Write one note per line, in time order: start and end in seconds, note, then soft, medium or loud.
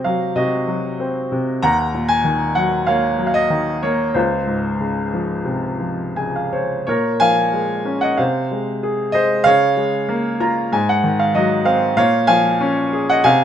0.00 0.34 C3 soft
0.00 0.05 F#3 soft
0.00 0.95 C4 soft
0.00 0.33 F#4 soft
0.00 0.36 D#5 medium
0.04 0.66 F#3 soft
0.04 0.34 F5 medium
0.36 1.30 C3 soft
0.36 1.58 F#4 soft
0.36 0.95 D#5 medium
0.67 1.58 F#3 soft
1.00 1.60 C4 soft
1.32 1.61 C3 soft
1.62 4.12 D#2 medium
1.62 2.54 F#5 medium
1.62 2.10 A#5 medium
1.94 3.15 A#2 soft
2.09 2.56 G#5 medium
2.24 3.47 D#3 soft
2.55 3.17 F#3 soft
2.55 2.84 F#5 medium
2.87 3.82 A#3 soft
2.87 3.81 C#5 medium
2.87 3.25 F5 medium
3.19 4.12 F#3 soft
3.27 3.34 F5 medium
3.34 3.84 D#5 medium
3.50 4.13 D#3 soft
3.83 4.14 A#3 medium
3.83 4.16 C#5 medium
4.14 6.84 C#2 medium
4.14 6.14 F4 soft
4.14 6.13 C5 medium
4.47 5.77 G#2 soft
4.80 6.13 C#3 soft
5.13 5.78 F3 soft
5.45 6.83 C3 soft
5.80 6.84 F3 soft
6.16 6.85 C#3 soft
6.16 6.34 G#5 soft
6.36 6.52 F5 soft
6.53 6.86 C5 soft
6.53 6.85 C#5 soft
6.87 8.15 A#2 medium
6.87 7.19 A#4 soft
6.87 7.21 C#5 medium
7.20 8.16 F3 soft
7.20 7.99 F5 medium
7.20 8.04 G#5 medium
7.53 8.17 G#3 soft
7.85 8.18 C#4 soft
8.01 8.18 D#5 medium
8.01 8.19 F#5 medium
8.17 9.42 C3 soft
8.17 8.80 C5 soft
8.17 8.79 F5 medium
8.51 9.13 G#3 soft
8.83 9.44 G#4 soft
9.12 9.45 G#3 soft
9.12 9.44 C5 medium
9.12 9.46 D#5 medium
9.44 10.69 C#3 medium
9.44 10.69 C#5 medium
9.44 10.68 F5 loud
9.77 10.70 G#3 soft
10.09 10.71 A#3 medium
10.40 10.72 F4 soft
10.40 10.70 A#5 medium
10.72 11.93 G#2 medium
10.72 10.87 G#5 medium
10.89 11.18 F#5 medium
11.04 11.94 D#3 soft
11.19 11.34 F5 medium
11.35 11.95 F#3 medium
11.35 11.64 D#5 medium
11.65 11.96 C4 medium
11.65 11.95 F5 medium
11.97 13.22 A#2 medium
11.97 12.27 C#5 medium
11.97 12.26 F5 medium
12.27 13.23 F3 medium
12.27 13.05 F5 medium
12.27 13.11 G#5 medium
12.61 13.24 C#4 medium
12.93 13.25 G#4 medium
13.09 13.25 D#5 medium
13.09 13.25 F#5 medium
13.24 13.44 C3 medium
13.24 13.44 F5 medium
13.24 13.44 G#5 medium